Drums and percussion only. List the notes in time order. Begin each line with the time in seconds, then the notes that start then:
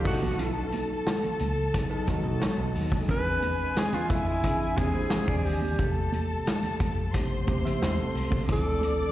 0.05 kick, open hi-hat
0.22 high conga, low conga
0.39 closed hi-hat, low conga
0.72 closed hi-hat, muted conga, high conga
1.06 snare, closed hi-hat, muted conga
1.22 closed hi-hat, high conga, low conga
1.39 closed hi-hat, high conga
1.74 kick, closed hi-hat
2.07 kick, snare, closed hi-hat, high conga
2.25 high conga
2.41 snare, closed hi-hat, muted conga
2.75 open hi-hat, muted conga
2.92 kick, high conga, low conga
3.08 kick, closed hi-hat, low conga
3.42 closed hi-hat, muted conga, high conga
3.76 snare, closed hi-hat, muted conga
3.93 closed hi-hat, high conga, low conga
4.10 kick, closed hi-hat, high conga
4.43 kick, closed hi-hat, muted conga
4.77 kick, snare, closed hi-hat, high conga
4.95 high conga
5.10 snare, closed hi-hat, muted conga
5.28 kick
5.46 open hi-hat
5.62 high conga, low conga
5.79 kick, closed hi-hat, low conga
6.12 closed hi-hat, muted conga, high conga
6.47 snare, closed hi-hat
6.63 closed hi-hat, high conga, low conga
6.80 kick, closed hi-hat, muted conga, high conga
7.14 kick, closed hi-hat, muted conga
7.47 kick, closed hi-hat, muted conga, high conga
7.64 closed hi-hat, high conga
7.82 snare, closed hi-hat
8.15 open hi-hat, muted conga
8.31 kick, high conga, low conga
8.48 kick, closed hi-hat, low conga
8.81 closed hi-hat, high conga